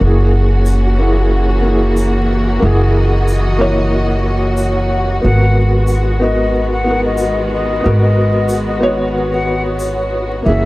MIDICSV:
0, 0, Header, 1, 7, 480
1, 0, Start_track
1, 0, Key_signature, 5, "minor"
1, 0, Tempo, 652174
1, 11, Time_signature, 4, 2, 24, 8
1, 7841, End_track
2, 0, Start_track
2, 0, Title_t, "Flute"
2, 0, Program_c, 0, 73
2, 3849, Note_on_c, 0, 78, 92
2, 4182, Note_off_c, 0, 78, 0
2, 4574, Note_on_c, 0, 75, 85
2, 4904, Note_off_c, 0, 75, 0
2, 4946, Note_on_c, 0, 78, 79
2, 5158, Note_off_c, 0, 78, 0
2, 5190, Note_on_c, 0, 75, 86
2, 5502, Note_off_c, 0, 75, 0
2, 5542, Note_on_c, 0, 75, 91
2, 5868, Note_off_c, 0, 75, 0
2, 5897, Note_on_c, 0, 75, 91
2, 6327, Note_off_c, 0, 75, 0
2, 6383, Note_on_c, 0, 75, 76
2, 6596, Note_off_c, 0, 75, 0
2, 6866, Note_on_c, 0, 78, 79
2, 7078, Note_off_c, 0, 78, 0
2, 7688, Note_on_c, 0, 76, 92
2, 7841, Note_off_c, 0, 76, 0
2, 7841, End_track
3, 0, Start_track
3, 0, Title_t, "Synth texture"
3, 0, Program_c, 1, 99
3, 0, Note_on_c, 1, 66, 74
3, 7841, Note_off_c, 1, 66, 0
3, 7841, End_track
4, 0, Start_track
4, 0, Title_t, "Felt piano"
4, 0, Program_c, 2, 0
4, 0, Control_c, 2, 64, 127
4, 0, Note_on_c, 2, 58, 65
4, 20, Note_on_c, 2, 64, 60
4, 22, Control_c, 2, 64, 0
4, 41, Note_on_c, 2, 68, 73
4, 152, Control_c, 2, 64, 127
4, 698, Note_off_c, 2, 58, 0
4, 709, Note_off_c, 2, 64, 0
4, 720, Note_off_c, 2, 68, 0
4, 726, Note_on_c, 2, 58, 73
4, 739, Note_on_c, 2, 64, 65
4, 750, Note_on_c, 2, 68, 73
4, 1177, Note_off_c, 2, 58, 0
4, 1188, Note_on_c, 2, 58, 62
4, 1189, Note_off_c, 2, 64, 0
4, 1194, Note_off_c, 2, 68, 0
4, 1216, Note_on_c, 2, 64, 60
4, 1236, Note_on_c, 2, 68, 71
4, 1893, Note_off_c, 2, 58, 0
4, 1908, Note_off_c, 2, 64, 0
4, 1910, Note_on_c, 2, 58, 80
4, 1917, Note_off_c, 2, 68, 0
4, 1930, Note_on_c, 2, 64, 72
4, 1952, Note_on_c, 2, 68, 88
4, 2614, Note_off_c, 2, 58, 0
4, 2625, Note_off_c, 2, 64, 0
4, 2635, Note_off_c, 2, 68, 0
4, 2636, Note_on_c, 2, 58, 82
4, 2651, Note_on_c, 2, 64, 80
4, 2657, Note_on_c, 2, 73, 93
4, 2801, Note_off_c, 2, 58, 0
4, 2808, Note_off_c, 2, 64, 0
4, 2811, Note_off_c, 2, 73, 0
4, 3839, Note_on_c, 2, 59, 63
4, 3859, Control_c, 2, 64, 0
4, 3860, Note_on_c, 2, 66, 59
4, 3879, Note_on_c, 2, 70, 72
4, 3971, Control_c, 2, 64, 127
4, 4539, Note_off_c, 2, 59, 0
4, 4550, Note_off_c, 2, 66, 0
4, 4559, Note_off_c, 2, 70, 0
4, 4561, Note_on_c, 2, 59, 68
4, 4575, Note_on_c, 2, 66, 63
4, 4589, Note_on_c, 2, 70, 78
4, 5020, Note_off_c, 2, 59, 0
4, 5027, Note_off_c, 2, 66, 0
4, 5034, Note_off_c, 2, 70, 0
4, 5037, Note_on_c, 2, 59, 65
4, 5056, Note_on_c, 2, 66, 59
4, 5081, Note_on_c, 2, 70, 70
4, 5734, Note_off_c, 2, 59, 0
4, 5745, Note_on_c, 2, 59, 80
4, 5747, Note_off_c, 2, 66, 0
4, 5760, Note_off_c, 2, 70, 0
4, 5769, Note_on_c, 2, 66, 75
4, 5786, Note_on_c, 2, 70, 92
4, 6452, Note_off_c, 2, 59, 0
4, 6464, Note_off_c, 2, 66, 0
4, 6472, Note_off_c, 2, 70, 0
4, 6478, Note_on_c, 2, 59, 86
4, 6488, Note_on_c, 2, 66, 79
4, 6499, Note_on_c, 2, 73, 103
4, 6642, Note_off_c, 2, 59, 0
4, 6647, Note_off_c, 2, 66, 0
4, 6652, Note_off_c, 2, 73, 0
4, 7670, Note_on_c, 2, 58, 64
4, 7693, Note_on_c, 2, 64, 60
4, 7701, Control_c, 2, 64, 0
4, 7714, Note_on_c, 2, 68, 73
4, 7832, Control_c, 2, 64, 127
4, 7841, Note_off_c, 2, 58, 0
4, 7841, Note_off_c, 2, 64, 0
4, 7841, Note_off_c, 2, 68, 0
4, 7841, End_track
5, 0, Start_track
5, 0, Title_t, "String section"
5, 0, Program_c, 3, 48
5, 0, Note_on_c, 3, 66, 65
5, 15, Note_on_c, 3, 58, 59
5, 16, Note_on_c, 3, 52, 67
5, 17, Note_on_c, 3, 61, 58
5, 1915, Note_off_c, 3, 61, 0
5, 1935, Note_on_c, 3, 75, 59
5, 3823, Note_off_c, 3, 58, 0
5, 3824, Note_off_c, 3, 52, 0
5, 3834, Note_off_c, 3, 75, 0
5, 3852, Note_on_c, 3, 59, 55
5, 3854, Note_on_c, 3, 51, 62
5, 3854, Note_on_c, 3, 56, 58
5, 7662, Note_off_c, 3, 59, 0
5, 7662, Note_off_c, 3, 66, 0
5, 7663, Note_off_c, 3, 51, 0
5, 7663, Note_off_c, 3, 56, 0
5, 7693, Note_on_c, 3, 58, 63
5, 7694, Note_on_c, 3, 52, 65
5, 7694, Note_on_c, 3, 61, 61
5, 7696, Note_on_c, 3, 66, 70
5, 7841, Note_off_c, 3, 52, 0
5, 7841, Note_off_c, 3, 58, 0
5, 7841, Note_off_c, 3, 61, 0
5, 7841, Note_off_c, 3, 66, 0
5, 7841, End_track
6, 0, Start_track
6, 0, Title_t, "Upright bass"
6, 0, Program_c, 4, 32
6, 8, Note_on_c, 4, 30, 73
6, 1908, Note_off_c, 4, 30, 0
6, 1932, Note_on_c, 4, 30, 74
6, 3830, Note_off_c, 4, 30, 0
6, 3860, Note_on_c, 4, 32, 71
6, 5754, Note_off_c, 4, 32, 0
6, 5781, Note_on_c, 4, 32, 77
6, 7674, Note_off_c, 4, 32, 0
6, 7700, Note_on_c, 4, 30, 83
6, 7841, Note_off_c, 4, 30, 0
6, 7841, End_track
7, 0, Start_track
7, 0, Title_t, "Drums"
7, 484, Note_on_c, 9, 82, 69
7, 558, Note_off_c, 9, 82, 0
7, 1449, Note_on_c, 9, 82, 61
7, 1522, Note_off_c, 9, 82, 0
7, 2414, Note_on_c, 9, 82, 67
7, 2488, Note_off_c, 9, 82, 0
7, 3364, Note_on_c, 9, 82, 74
7, 3438, Note_off_c, 9, 82, 0
7, 4323, Note_on_c, 9, 82, 66
7, 4397, Note_off_c, 9, 82, 0
7, 5282, Note_on_c, 9, 82, 62
7, 5356, Note_off_c, 9, 82, 0
7, 6248, Note_on_c, 9, 82, 70
7, 6322, Note_off_c, 9, 82, 0
7, 7209, Note_on_c, 9, 82, 69
7, 7283, Note_off_c, 9, 82, 0
7, 7841, End_track
0, 0, End_of_file